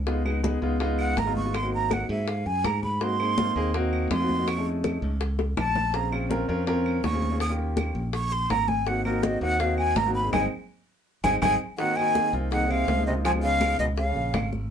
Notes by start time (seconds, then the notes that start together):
Already playing: C#2
0.07 G#3 B3 D#4 F4, high bongo, high conga
0.25 G#3 B3 D#4 G#4, high conga, claves
0.43 G#3 B3 D#4 G#4, high bongo, high conga
0.62 C#2 G#3 B3 D#4 F4
0.80 G#3 B3 D#4 F4, high bongo, high conga
0.99 F#5, high conga, claves
1.17 G#1 A#5, high bongo, low bongo, high conga
1.26 G#3 B3 D#4 F4
1.36 C#6, high conga
1.44 G#3 B3 D#4 F4
1.54 C6, high bongo, high conga, claves
1.62 A#3 C4 D#4 F#4
1.72 A#5, high bongo, high conga
1.91 F#5, high bongo, high conga, claves
2.09 G#2 E5, high conga
2.28 F5, high bongo, high conga
2.46 F#2 G#5, high bongo, high conga
2.64 G#2 A#5, high bongo, low bongo, high conga, claves
2.83 B5, high bongo, high conga
3.00 A#3 C4 D#4 F#4 C6, high bongo, high conga
3.19 A#3 C4 D#4 G#4, high conga, claves
3.38 A#3 C4 D#4 F4, high bongo, high conga
3.56 D#2 A#3 C4 D#4 G#4
3.74 A#3 C4 D#4 F#4, high bongo, high conga
3.93 high conga, claves
4.11 F2 C6, high bongo, low bongo, high conga
4.20 A#3 C4 D#4 F#4
4.29 high conga
4.38 A#3 C4 D#4 F#4
4.48 C#6, high bongo, high conga, claves
4.57 A3 C#4 D#4 G#4
4.66 high bongo, high conga
4.84 high bongo, high conga, claves
5.02 C#2, high conga
5.21 high bongo, high conga
5.39 high bongo, high conga
5.57 A#1 A5, low bongo, high conga, claves
5.75 low bongo, high conga
5.93 C4 C#4 F4 G#4 A#5, high bongo
6.12 C4 C#4 F4 G#4, high conga, claves
6.29 C4 C#4 F4 A#4, high bongo, high conga
6.48 F2 C4 C#4 F4 A#4
6.67 C4 C#4 F4 A#4, high bongo, high conga
6.86 high conga, claves
7.04 D#2 C#6, high bongo, low bongo, high conga
7.13 C4 C#4 F4 G#4
7.22 high conga
7.31 C4 C#4 F4 G#4
7.40 D#6, high bongo, claves
7.49 A#3 C#4 F4 G4
7.59 high bongo, high conga
7.77 high bongo, high conga, claves
7.95 A#1, high conga
8.13 C#6, high bongo, high conga
8.31 C6, high bongo, high conga
8.50 G#1 A#5, high bongo, low bongo, high conga, claves
8.68 G#5, high bongo, high conga
8.86 A#3 C4 D#4 F#4 F#5, high bongo, high conga
9.05 A#3 C4 D#4 F#4 A#4, high conga, claves
9.23 A#3 C4 D#4 F#4 D#5, high bongo, high conga
9.41 D#2 A#3 C4 D#4 F#4 F#5
9.59 A#3 C4 D#4 F#4 F5, high bongo, high conga
9.78 G#5, high conga, claves
9.96 G#1 A#5, high bongo, low bongo, high conga
10.05 A#3 C4 D#4 F#4
10.15 B5
10.23 A#3 C4 D#4 G#4
10.33 G#1 G#3 C4 D#4 G#5, low bongo, low conga, claves
11.24 G#1 G#3 C4 D#4 G#5, low bongo, low conga, claves
11.42 G#1 G#3 C4 D#4 G#5, low bongo, low conga, claves
11.78 D#3 A#3 C4 D#4 F#4 F#5, high bongo, high conga
11.96 D#3 A#3 C4 D#4 F#4 G#5, high conga, claves
12.14 A#3 C4 D#4 G#4, high bongo, high conga
12.33 C2 A#3 C4 D#4 F4
12.51 D#3 A#3 C4 D#4 G#4 F#5, high bongo, high conga
12.70 C3 F5, high conga, claves
12.88 C#2, high bongo, low bongo, high conga
12.97 A#3 C4 D#4 G#4
13.07 C3 D#5
13.14 A#3 C4 D#4 F4
13.25 F3 G#5, high bongo, claves
13.33 G#3 B3 D#4 F4
13.43 C#3 F5, high bongo, high conga
13.61 high bongo, high conga, claves
13.79 C#2 B2 D#5, high conga
13.97 C#3 F5, high bongo, high conga
14.16 A#1, high bongo, high conga
14.34 G#1, high bongo, low bongo, high conga, claves
14.52 high bongo, high conga